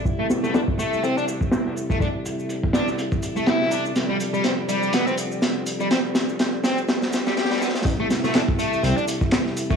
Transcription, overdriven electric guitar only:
X:1
M:4/4
L:1/16
Q:"Swing 16ths" 1/4=123
K:Am
V:1 name="Overdriven electric guitar"
z A, z A, D z A,2 C D z4 z A, | D z4 z D z4 A, E2 D z | z G, z G, C z G,2 B, C z4 z G, | C z4 z C z4 G, G G, B, z |
z A, z A, D z A,2 C D z4 z A, |]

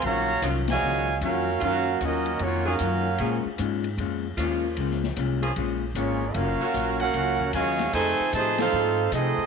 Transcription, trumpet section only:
X:1
M:4/4
L:1/8
Q:"Swing" 1/4=152
K:Bbm
V:1 name="Trumpet section"
[Gdfb]2 z [Gdfa]3 [DGBf]2 | [DGBf]2 [DGBe]2 [B,FGd] [DGBf]3- | [DGBf] z6 z | z6 [B,FAd]2 |
[DGBf]3 [DBfg]3 [Gdfa]2 | [E=Ac^g]2 [E^Gc=a] [EAcf]3 [CGAe]2 |]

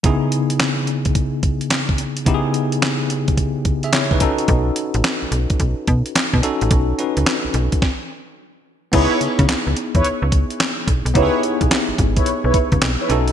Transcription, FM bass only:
X:1
M:4/4
L:1/16
Q:"Swing 16ths" 1/4=108
K:C#m
V:1 name="FM bass" clef=bass
z16 | z16 | B,,,2 z A,,, z B,,, B,,, z B,,, z B,, z2 B,, z A,,, | B,,,2 z C,, z B,,, B,,, z8 z |
C,, z C, C, C,, C,, z E,, C,, C,,2 z3 B,,, B,,, | C,, z2 B,,, z G,,, G,,,2 B,,, B,,, z C,, B,,, z B,,,2 |]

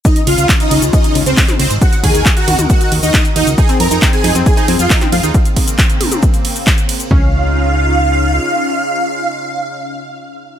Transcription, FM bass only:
X:1
M:4/4
L:1/16
Q:1/4=136
K:Db
V:1 name="FM bass" clef=bass
z2 D,, D,, z2 D,, D,, z2 D,, D,, z2 D,, A,,, | z2 E,, E,, z2 E,, E,, z2 E,, E,, z2 E,, D,, | z2 F,, F,, z2 F,, F,, z2 F,, F,, z2 F,, E,, | z16 |
D,,12 z4 | z16 |]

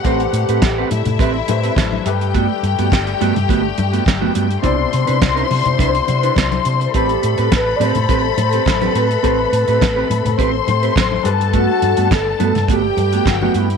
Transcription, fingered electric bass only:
X:1
M:4/4
L:1/16
Q:1/4=104
K:Ador
V:1 name="Fingered electric bass" clef=bass
A,,,2 A,, A,, A,,,2 A,, A,, A,,,2 A,,2 A,,,2 G,,2- | G,,2 G,, G,, G,,,2 G,, G,, G,,,2 G,,2 G,,,2 G,,2 | C,,2 C, C, C,,2 C, C, C,,2 C,2 C,,2 C,2 | A,,,2 A,, A,, A,,,2 A,, A,, A,,,2 A,,2 A,,,2 A,,2 |
A,,,2 A,, A,, A,,,2 A,, A,, A,,,2 A,,2 A,,,2 G,,2- | G,,2 G,, G,, G,,,2 G,, G,, G,,,2 G,,2 G,,,2 G,,2 |]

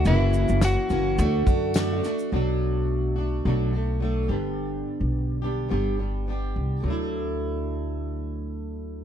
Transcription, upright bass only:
X:1
M:4/4
L:1/16
Q:"Swing 16ths" 1/4=106
K:D
V:1 name="Upright bass" clef=bass
F,,,3 F,,,2 z F,,,2 D,,2 F,,4 z2 | B,,,8 B,,,6 G,,,2- | G,,,2 z B,,,4- B,,, G,,,6 =C,,2 | D,,16 |]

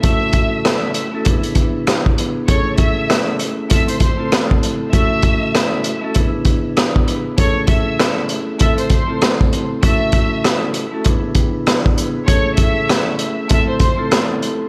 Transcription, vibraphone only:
X:1
M:4/4
L:1/16
Q:"Swing 16ths" 1/4=98
K:A
V:1 name="Vibraphone"
[A,CEFA]6 z [A,CEFA] [B,DEGB]6 [B,DEGB]2 | [A,CEGA]8 [A,=CE=FA]2 z [A,CEFA]4- [A,CEFA] | [A,CEFA]6 z [A,CEFA] [B,DEGB]6 [B,DEGB]2 | [A,CEGA]8 [A,=CE=FA]2 z [A,CEFA]4- [A,CEFA] |
[A,CEFA]6 z [A,CEFA] [B,DEGB]6 [B,DEGB]2 | [A,CEGA]8 [A,=CE=FA]2 z [A,CEFA]4- [A,CEFA] |]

